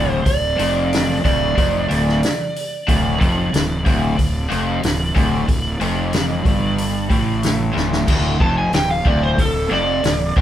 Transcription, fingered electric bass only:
0.00 0.23 D1 loud
0.26 0.56 D1 medium
0.59 1.20 F1 medium
1.24 1.54 D1 medium
1.57 1.87 F1 medium
1.91 2.20 D1 medium
2.89 3.18 D1 medium
3.22 3.51 F1 medium
3.54 3.83 D1 medium
3.86 4.16 D1 medium
4.19 4.49 D1 medium
4.52 4.81 F1 medium
4.84 5.14 D1 medium
5.16 5.46 D1 medium
5.48 5.78 D1 medium
5.81 6.42 F1 medium
6.46 7.07 G1 medium
7.11 7.72 A1 medium
7.75 8.06 D1 medium
8.08 8.39 D1 medium
8.40 8.71 F1 medium
8.73 9.04 D1 medium
9.05 9.36 D1 medium
9.38 9.69 D1 medium
9.71 10.02 F1 medium
10.05 10.35 D1 medium
10.37 10.41 D1 medium

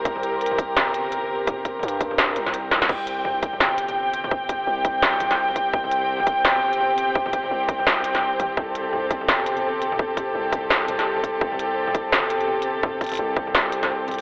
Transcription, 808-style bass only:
0.05 0.75 C2 medium
0.76 1.82 G1 medium
1.83 2.35 G2 medium
2.36 2.88 C2 loud
2.89 3.59 C2 medium
3.60 4.66 G1 loud
4.67 5.72 C2 loud
5.74 6.43 C2 medium
6.45 7.50 G1 medium
7.51 8.56 C2 loud
8.57 9.27 C2 medium
9.28 10.34 G1 loud
10.35 11.40 C2 medium
11.41 12.11 C2 medium
12.12 13.18 G1 medium
13.19 13.53 C2 loud
13.54 14.21 C2 loud

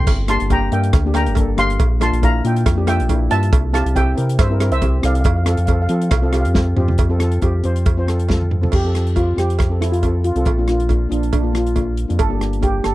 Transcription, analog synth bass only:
0.07 0.38 G1 loud
0.41 0.70 G1 medium
0.72 0.92 G2 medium
0.93 1.29 D2 medium
1.28 1.57 G1 medium
1.58 1.78 G1 loud
1.80 2.11 A#1 loud
2.12 2.42 A#1 medium
2.44 2.65 A#2 medium
2.66 3.01 F2 medium
3.00 3.29 A#1 loud
3.32 3.52 G2 loud
3.52 3.83 C2 medium
3.85 4.15 C2 medium
4.18 4.38 C3 medium
4.39 4.72 G2 loud
4.71 5.01 C2 loud
5.03 5.24 C2 loud
5.25 5.56 F2 loud
5.58 5.88 F2 medium
5.89 6.10 F3 medium
6.12 6.47 C2 loud
6.45 6.75 F2 loud
6.77 6.97 F2 loud
6.99 7.39 F2 loud
7.43 7.63 F2 medium
7.65 8.69 F2 medium
8.73 9.34 F2 loud
9.38 10.32 F2 medium
10.36 10.45 C2 loud
10.47 11.07 A#1 loud
11.11 12.06 A#1 medium
12.10 12.19 F2 loud
12.20 12.81 G1 loud
12.85 12.95 G1 medium

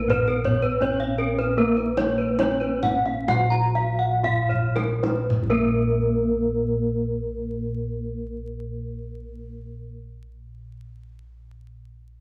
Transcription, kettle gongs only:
0.00 3.27 A#1 loud
0.00 0.77 A#4 medium
0.81 0.89 B3 soft
1.58 4.21 A#4 medium
2.39 2.47 B3 soft
3.28 6.38 A#2 medium
4.25 4.33 B3 soft
5.42 9.88 A#1 loud

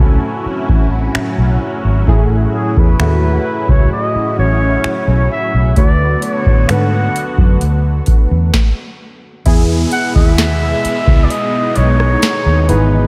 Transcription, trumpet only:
0.00 1.16 A4 medium
2.55 2.80 G#4 medium
2.78 3.72 B4 medium
3.70 3.93 C#5 medium
3.93 4.35 D#5 loud
4.39 5.27 C#5 loud
5.32 5.74 E5 loud
5.78 6.25 D5 loud
6.24 6.71 C#5 medium
6.70 7.61 F#5 loud
9.92 10.14 F#5 loud
10.15 11.26 E5 loud
11.24 11.32 D5 medium
11.30 11.78 D#5 loud
11.76 12.70 C#5 loud
12.69 13.07 B4 medium

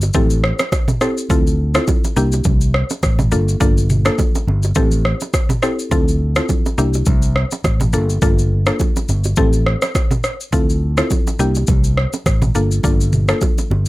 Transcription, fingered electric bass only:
0.15 0.51 A1 loud
1.30 1.77 D2 loud
2.17 2.40 C2 loud
2.45 2.82 C2 loud
3.03 3.34 A1 medium
3.32 3.56 G1 medium
3.61 4.08 G1 loud
4.47 4.71 G1 loud
4.76 5.13 A1 loud
5.92 6.39 D2 loud
6.78 7.02 C2 loud
7.07 7.43 C2 loud
7.64 7.95 A1 medium
7.93 8.17 G1 medium
8.22 8.69 G1 loud
9.09 9.32 G1 loud
9.37 9.74 A1 loud
10.53 11.00 D2 loud
11.39 11.63 C2 loud
11.68 12.05 C2 loud
12.26 12.50 A1 loud
12.55 12.79 G1 medium
12.84 13.31 G1 loud
13.70 13.88 G1 loud

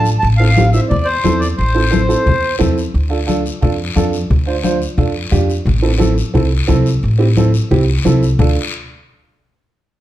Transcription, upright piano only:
0.40 0.46 C4 medium
0.40 0.46 E4 medium
0.40 0.46 A4 medium
0.58 0.63 C4 medium
0.58 0.63 E4 medium
0.58 0.63 G4 medium
0.74 0.91 C4 medium
0.74 0.92 E4 medium
0.74 0.92 C5 medium
1.24 1.42 C4 medium
1.24 1.42 E4 medium
1.24 1.43 A4 medium
1.75 1.81 C4 medium
1.75 1.81 E4 medium
1.75 1.82 A4 medium
1.91 1.98 C4 medium
1.91 1.98 E4 medium
1.91 1.98 A4 medium
2.09 2.27 C4 medium
2.09 2.27 E4 medium
2.09 2.27 A4 medium
2.59 2.78 C4 medium
2.59 2.78 E4 medium
2.59 2.78 A4 loud
3.09 3.16 D4 medium
3.09 3.17 F4 medium
3.09 3.17 A4 medium
3.27 3.40 D4 medium
3.27 3.40 F4 medium
3.27 3.40 A4 loud
3.61 3.74 D4 medium
3.61 3.74 F4 medium
3.61 3.74 A4 medium
3.96 4.14 D4 medium
3.96 4.14 F4 medium
3.96 4.15 A4 loud
4.46 4.53 D4 medium
4.46 4.53 F4 medium
4.46 4.53 C5 medium
4.63 4.76 D4 medium
4.63 4.76 F4 medium
4.63 4.76 C5 loud
4.98 5.10 D4 medium
4.98 5.10 F4 medium
4.98 5.10 A4 medium
5.31 5.50 D4 medium
5.31 5.50 F4 medium
5.31 5.50 G4 loud
5.82 5.89 C4 medium
5.82 5.89 E4 medium
5.82 5.89 A4 medium
5.98 6.12 C4 medium
5.98 6.12 E4 medium
5.98 6.12 A4 loud
6.34 6.46 C4 medium
6.34 6.47 E4 medium
6.34 6.47 A4 medium
6.68 6.86 C4 medium
6.68 6.86 E4 medium
6.68 6.87 A4 loud
7.19 7.25 C4 medium
7.19 7.26 E4 medium
7.19 7.26 G4 medium
7.37 7.49 C4 medium
7.37 7.49 E4 medium
7.37 7.49 A4 loud
7.71 7.83 C4 medium
7.71 7.83 E4 medium
7.71 7.83 G4 medium
8.05 8.23 C4 medium
8.05 8.23 E4 medium
8.05 8.24 A4 loud
8.39 8.55 D4 medium
8.39 8.55 F4 medium
8.39 8.55 A4 medium

